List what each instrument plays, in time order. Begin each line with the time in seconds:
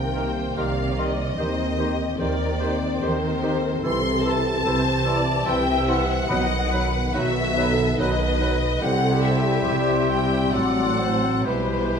Already playing: double bass section C2, cello section C3, french horn section D#3 A#3, viola section A#4, violin section G5
0.13 bassoon D#3, clarinet G4, oboe A#4, viola section C5, flute section C6
0.55 double bass section C2, cello section C3, bassoon D#3, clarinet G4, oboe A#4, viola section D5, violin section F5, flute section C6
0.98 bassoon D#3, clarinet G4, oboe A#4, violin section D#5, flute section C6
1.37 double bass section D#2, french horn section D#3 C4, cello section D#3, bassoon D#3, clarinet G4, oboe C5, viola section C5, flute section C6
1.79 bassoon D#3, viola section G4, clarinet G4, oboe C5, flute section C6
2.18 double bass section D#2, cello section D#3, bassoon D#3, clarinet G4, viola section A#4, oboe C5, violin section D5, flute section C6
2.59 bassoon D#3, clarinet G4, viola section C5, oboe C5, flute section C6
3.00 double bass section D#2, cello section D#3, bassoon D#3, clarinet G4, viola section A#4, oboe C5, violin section C5, flute section C6
3.42 bassoon D#3, clarinet G4, oboe C5, flute section C6
3.83 double bass section C2, cello section C3, bassoon E3, french horn section E3, clarinet E4, oboe A4, viola section A4, violin section C6, flute section C6
4.24 bassoon E3, clarinet E4, oboe A4, violin section A5, flute section C6
4.64 double bass section C2, cello section C3, bassoon E3, clarinet E4, oboe A4, viola section C5, flute section C6
5.04 bassoon E3, clarinet E4, oboe A4, viola section D5, flute section C6
5.45 double bass section C2, cello section C3, bassoon E3, clarinet E4, oboe A4, viola section E5, violin section G5, flute section C6
5.87 bassoon E3, clarinet E4, oboe A4, violin section F#5, flute section C6
6.29 double bass section B1, timpani B2, cello section B2, french horn section D#3 B3, bassoon F#3, clarinet D#4, oboe B4, viola section D#5, flute section B5
6.71 bassoon F#3, clarinet D#4, viola section B4, oboe B4, flute section B5
7.14 double bass section B1, cello section B2, bassoon F#3, clarinet D#4, viola section F#4, oboe B4, violin section E5, flute section B5
7.56 bassoon F#3, clarinet D#4, viola section A4, oboe B4, flute section B5
7.98 double bass section B1, cello section B2, bassoon F#3, clarinet D#4, viola section B4, oboe B4, violin section D#5, flute section B5
8.39 bassoon F#3, clarinet D#4, oboe B4, flute section B5
8.81 double bass section C2, cello section C3, french horn section G3 C4, bassoon G3, clarinet E4, oboe G4, viola section A4, violin section F#5, flute section C6
9.24 violin section E5
9.65 double bass section C2, cello section C3, viola section G4
10.08 viola section E5, violin section G5
10.51 double bass section A1, cello section A2, french horn section F#3, bassoon F#3, clarinet C4, oboe A4, viola section D5, violin section F#5, flute section C6
10.99 viola section C5
11.44 double bass section B1, cello section B2, bassoon E3, french horn section G3 E4, clarinet E4, oboe G4, viola section B4, violin section C5, flute section B5